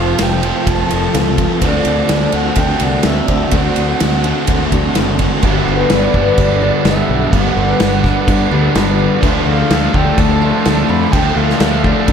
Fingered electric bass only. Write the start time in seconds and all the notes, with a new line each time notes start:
Already playing: F1
0.20 F1
0.67 F1
0.92 F1
1.15 C#2
1.62 D2
1.86 D2
2.10 D2
2.33 D2
2.57 D2
2.81 C2
3.05 D2
3.28 D2
3.53 D2
3.77 D2
4.01 D2
4.48 D2
4.73 D2
4.96 F#1
5.43 G1
5.68 G1
5.91 G1
6.14 G1
6.38 G1
6.85 G1
7.09 B1
7.33 G1
7.57 G1
7.81 G1
8.28 G2
8.51 D2
8.76 G1
9.23 D2
9.46 D2
9.71 D2
9.94 D2
10.18 D2
10.66 D2
10.89 F2
11.13 D2
11.36 D2
11.60 D2
12.09 D3